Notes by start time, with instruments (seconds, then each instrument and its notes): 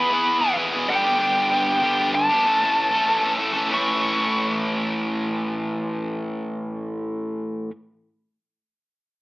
Already playing: overdriven electric guitar E3 B3 E4, lead electric guitar B5
0.10 overdriven electric guitar E3 B3 E4 G#4
0.41 overdriven electric guitar B3 E4 G#4
0.45 overdriven electric guitar E3
0.55 overdriven electric guitar E2 B2 E3 B3 E4 G#4
0.72 overdriven electric guitar E3 B3 E4 G#4
0.88 overdriven electric guitar G2 D3 G3 B3 D4 G4, lead electric guitar G5
1.03 overdriven electric guitar G3 B3 D4 G4
1.18 overdriven electric guitar G2 D3 G3 B3 D4 G4
1.51 overdriven electric guitar G3 B3 D4 G4
1.82 overdriven electric guitar G2 D3 G3 B3 D4 G4
1.99 overdriven electric guitar G3 B3 D4 G4
2.14 lead electric guitar A5, muted overdriven electric guitar stroke
2.29 overdriven electric guitar G3 B3 D4 G4
2.44 overdriven electric guitar A2 E3 A3 C#4 A4
2.61 overdriven electric guitar A3 C#4 A4
2.92 overdriven electric guitar A3 C#4 A4
3.06 overdriven electric guitar A2 E3 A3 C#4 A4
3.23 overdriven electric guitar A3 C#4 A4
3.38 overdriven electric guitar E3 A3 C#4 A4
3.53 overdriven electric guitar A3 C#4 A4
3.69 overdriven electric guitar A2 E3 A3 C#4
3.73 overdriven electric guitar E4, lead electric guitar C#6